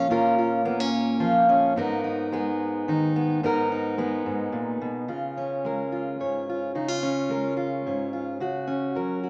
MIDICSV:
0, 0, Header, 1, 2, 480
1, 0, Start_track
1, 0, Tempo, 551978
1, 103, Time_signature, 6, 3, 24, 8
1, 8083, End_track
2, 0, Start_track
2, 0, Title_t, "Steel-string acoustic guitar"
2, 0, Program_c, 0, 25
2, 0, Note_on_c, 0, 58, 69
2, 0, Note_on_c, 0, 70, 73
2, 88, Note_on_c, 0, 46, 82
2, 93, Note_on_c, 0, 61, 75
2, 98, Note_on_c, 0, 65, 72
2, 100, Note_off_c, 0, 70, 0
2, 104, Note_on_c, 0, 70, 82
2, 324, Note_off_c, 0, 65, 0
2, 334, Note_on_c, 0, 65, 58
2, 565, Note_off_c, 0, 61, 0
2, 566, Note_off_c, 0, 58, 0
2, 568, Note_on_c, 0, 59, 68
2, 569, Note_on_c, 0, 58, 69
2, 696, Note_off_c, 0, 59, 0
2, 696, Note_on_c, 0, 61, 59
2, 1034, Note_off_c, 0, 65, 0
2, 1044, Note_on_c, 0, 53, 66
2, 1045, Note_on_c, 0, 65, 61
2, 1287, Note_off_c, 0, 61, 0
2, 1297, Note_on_c, 0, 61, 67
2, 1500, Note_off_c, 0, 46, 0
2, 1500, Note_off_c, 0, 53, 0
2, 1500, Note_off_c, 0, 65, 0
2, 1507, Note_off_c, 0, 61, 0
2, 1532, Note_on_c, 0, 44, 84
2, 1541, Note_on_c, 0, 59, 71
2, 1542, Note_on_c, 0, 63, 73
2, 1549, Note_off_c, 0, 70, 0
2, 1552, Note_on_c, 0, 70, 85
2, 1559, Note_off_c, 0, 58, 0
2, 1771, Note_off_c, 0, 63, 0
2, 1775, Note_on_c, 0, 63, 63
2, 2020, Note_on_c, 0, 56, 71
2, 2025, Note_off_c, 0, 59, 0
2, 2029, Note_on_c, 0, 59, 70
2, 2493, Note_off_c, 0, 63, 0
2, 2504, Note_on_c, 0, 51, 66
2, 2513, Note_on_c, 0, 63, 70
2, 2740, Note_off_c, 0, 59, 0
2, 2748, Note_on_c, 0, 59, 63
2, 2949, Note_off_c, 0, 51, 0
2, 2970, Note_off_c, 0, 44, 0
2, 2980, Note_off_c, 0, 59, 0
2, 2982, Note_off_c, 0, 63, 0
2, 2985, Note_on_c, 0, 44, 88
2, 2991, Note_on_c, 0, 59, 74
2, 2996, Note_on_c, 0, 63, 75
2, 3002, Note_off_c, 0, 70, 0
2, 3005, Note_on_c, 0, 70, 78
2, 3031, Note_off_c, 0, 56, 0
2, 3223, Note_off_c, 0, 63, 0
2, 3235, Note_on_c, 0, 63, 64
2, 3457, Note_off_c, 0, 59, 0
2, 3461, Note_on_c, 0, 56, 67
2, 3467, Note_on_c, 0, 59, 65
2, 3695, Note_off_c, 0, 44, 0
2, 3705, Note_on_c, 0, 44, 72
2, 3930, Note_off_c, 0, 44, 0
2, 3934, Note_on_c, 0, 46, 70
2, 4172, Note_off_c, 0, 46, 0
2, 4187, Note_on_c, 0, 47, 71
2, 4387, Note_off_c, 0, 56, 0
2, 4399, Note_off_c, 0, 70, 0
2, 4419, Note_off_c, 0, 47, 0
2, 4419, Note_off_c, 0, 59, 0
2, 4420, Note_off_c, 0, 63, 0
2, 4420, Note_on_c, 0, 49, 59
2, 4423, Note_on_c, 0, 65, 51
2, 4674, Note_on_c, 0, 61, 45
2, 4910, Note_on_c, 0, 56, 48
2, 4923, Note_on_c, 0, 70, 47
2, 5147, Note_off_c, 0, 65, 0
2, 5151, Note_on_c, 0, 65, 46
2, 5378, Note_off_c, 0, 49, 0
2, 5393, Note_on_c, 0, 44, 50
2, 5394, Note_off_c, 0, 70, 0
2, 5398, Note_on_c, 0, 73, 46
2, 5623, Note_off_c, 0, 65, 0
2, 5648, Note_on_c, 0, 65, 46
2, 5835, Note_off_c, 0, 56, 0
2, 5843, Note_off_c, 0, 65, 0
2, 5864, Note_off_c, 0, 44, 0
2, 5870, Note_on_c, 0, 49, 60
2, 5874, Note_on_c, 0, 63, 54
2, 5899, Note_off_c, 0, 61, 0
2, 5899, Note_off_c, 0, 73, 0
2, 5986, Note_off_c, 0, 63, 0
2, 5986, Note_on_c, 0, 65, 37
2, 6113, Note_on_c, 0, 61, 47
2, 6342, Note_on_c, 0, 56, 54
2, 6355, Note_on_c, 0, 70, 53
2, 6571, Note_off_c, 0, 65, 0
2, 6581, Note_on_c, 0, 65, 53
2, 6826, Note_off_c, 0, 49, 0
2, 6827, Note_off_c, 0, 70, 0
2, 6837, Note_on_c, 0, 44, 54
2, 6842, Note_on_c, 0, 73, 45
2, 7061, Note_off_c, 0, 65, 0
2, 7070, Note_on_c, 0, 65, 47
2, 7274, Note_off_c, 0, 56, 0
2, 7276, Note_off_c, 0, 65, 0
2, 7280, Note_off_c, 0, 61, 0
2, 7283, Note_off_c, 0, 73, 0
2, 7308, Note_on_c, 0, 49, 62
2, 7309, Note_off_c, 0, 44, 0
2, 7316, Note_on_c, 0, 66, 56
2, 7545, Note_on_c, 0, 61, 48
2, 7786, Note_off_c, 0, 49, 0
2, 7786, Note_on_c, 0, 54, 52
2, 7795, Note_on_c, 0, 70, 51
2, 8027, Note_off_c, 0, 66, 0
2, 8031, Note_on_c, 0, 66, 57
2, 8083, Note_off_c, 0, 54, 0
2, 8083, Note_off_c, 0, 61, 0
2, 8083, Note_off_c, 0, 66, 0
2, 8083, Note_off_c, 0, 70, 0
2, 8083, End_track
0, 0, End_of_file